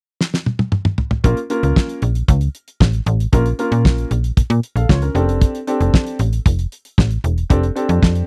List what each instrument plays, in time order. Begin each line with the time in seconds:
0.21 snare
0.34 snare
0.46 high tom
0.59 high tom
0.72 mid tom
0.85 mid tom
0.98 floor tom
1.11 floor tom
1.24 fm bass A#1, grand piano A#3 C#4 F4 A#4, kick, closed hi-hat
1.37 closed hi-hat
1.50 grand piano A#3 C#4 F4 A#4, closed hi-hat
1.63 fm bass C#2, closed hi-hat
1.76 kick, snare
1.89 closed hi-hat
2.02 fm bass A#1, closed hi-hat
2.15 closed hi-hat
2.28 fm bass C#2, kick, closed hi-hat
2.41 closed hi-hat
2.55 closed hi-hat
2.68 closed hi-hat
2.80 fm bass A1, kick, snare
2.93 closed hi-hat
3.06 fm bass A1, closed hi-hat
3.20 closed hi-hat
3.32 fm bass A#1, grand piano A#3 C#4 F4 A#4, kick, closed hi-hat
3.46 closed hi-hat
3.59 grand piano A#3 C#4 F4 A#4, closed hi-hat
3.72 fm bass A#2, closed hi-hat
3.85 fm bass A#1, kick, snare
3.98 closed hi-hat
4.11 fm bass A#1, closed hi-hat
4.24 closed hi-hat
4.37 fm bass A#2, kick, closed hi-hat
4.50 fm bass A#2, closed hi-hat
4.63 closed hi-hat
4.76 fm bass A#1, grand piano A4 F5, closed hi-hat
4.89 fm bass C#2, grand piano F4 C#5, kick, snare
5.02 grand piano C#4 A#4, closed hi-hat
5.14 fm bass F1, grand piano C4 D4 G4 A4, closed hi-hat
5.29 closed hi-hat
5.41 kick, closed hi-hat
5.55 closed hi-hat
5.67 grand piano C4 D4 G4 A4, closed hi-hat
5.81 fm bass F1, closed hi-hat
5.94 kick, snare
6.07 closed hi-hat
6.19 fm bass A1, closed hi-hat
6.33 closed hi-hat
6.46 fm bass F1, kick, closed hi-hat
6.59 closed hi-hat
6.72 closed hi-hat
6.85 closed hi-hat
6.98 fm bass A1, kick, snare
7.11 closed hi-hat
7.24 fm bass E1, closed hi-hat
7.38 closed hi-hat
7.50 fm bass F1, grand piano C4 D4 G4 A4, kick, closed hi-hat
7.63 closed hi-hat
7.75 grand piano C4 D4 G4 A4, closed hi-hat
7.89 fm bass F2, closed hi-hat
8.02 fm bass F2, kick, snare
8.15 closed hi-hat